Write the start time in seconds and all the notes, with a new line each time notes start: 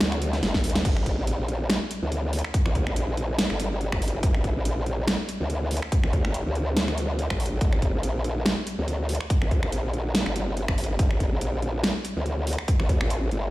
0.01 D2, snare, closed hi-hat
0.12 finger snap, closed hi-hat
0.22 closed hi-hat
0.33 snare, closed hi-hat
0.43 G1, snare, closed hi-hat
0.54 kick, snare
0.64 D2, open hi-hat
0.70 closed hi-hat
0.75 snare
0.85 G1, kick, closed hi-hat, crash
0.97 finger snap
1.06 kick, closed hi-hat
1.18 A#1
1.27 closed hi-hat
1.48 closed hi-hat
1.70 snare, closed hi-hat
1.91 closed hi-hat
2.02 D2
2.12 closed hi-hat
2.33 open hi-hat
2.39 closed hi-hat
2.45 finger snap
2.54 kick, closed hi-hat
2.66 D2, finger snap
2.75 kick, closed hi-hat
2.87 A#1, finger snap
2.96 closed hi-hat
3.17 closed hi-hat
3.39 snare, closed hi-hat
3.50 G1, finger snap
3.60 closed hi-hat
3.81 closed hi-hat
3.92 G1, finger snap, kick
4.02 open hi-hat
4.08 closed hi-hat
4.23 G1, kick, closed hi-hat
4.35 finger snap
4.44 kick, closed hi-hat
4.56 A#1
4.65 closed hi-hat
4.86 closed hi-hat
5.08 snare, closed hi-hat
5.29 closed hi-hat
5.40 D2
5.50 closed hi-hat
5.71 open hi-hat
5.77 closed hi-hat
5.82 finger snap
5.92 kick, closed hi-hat
6.04 D2, finger snap
6.13 kick, closed hi-hat
6.25 G1, finger snap
6.34 closed hi-hat
6.46 D2
6.55 closed hi-hat
6.77 snare, closed hi-hat
6.88 finger snap, closed hi-hat
6.98 closed hi-hat
7.19 closed hi-hat
7.30 A#1, finger snap, kick
7.40 open hi-hat
7.46 closed hi-hat
7.61 G1, kick, closed hi-hat
7.73 finger snap
7.82 kick, closed hi-hat
7.94 A#1
8.03 closed hi-hat
8.24 closed hi-hat
8.46 snare, closed hi-hat
8.67 closed hi-hat
8.78 D2
8.88 closed hi-hat
9.09 open hi-hat
9.15 closed hi-hat
9.21 finger snap
9.30 kick, closed hi-hat
9.42 D2, finger snap
9.51 kick, closed hi-hat
9.63 A#1, finger snap
9.72 closed hi-hat
9.94 closed hi-hat
10.15 snare, closed hi-hat
10.26 G1, finger snap
10.36 closed hi-hat
10.57 closed hi-hat
10.68 G1, finger snap, kick
10.78 open hi-hat
10.84 closed hi-hat
10.99 G1, kick, closed hi-hat
11.11 finger snap
11.20 kick, closed hi-hat
11.32 A#1
11.41 closed hi-hat
11.62 closed hi-hat
11.84 snare, closed hi-hat
12.05 closed hi-hat
12.16 D2
12.26 closed hi-hat
12.47 open hi-hat
12.53 closed hi-hat
12.59 finger snap
12.68 kick, closed hi-hat
12.80 D2, finger snap
12.89 kick, closed hi-hat
13.01 A1, finger snap
13.10 closed hi-hat
13.31 G1, closed hi-hat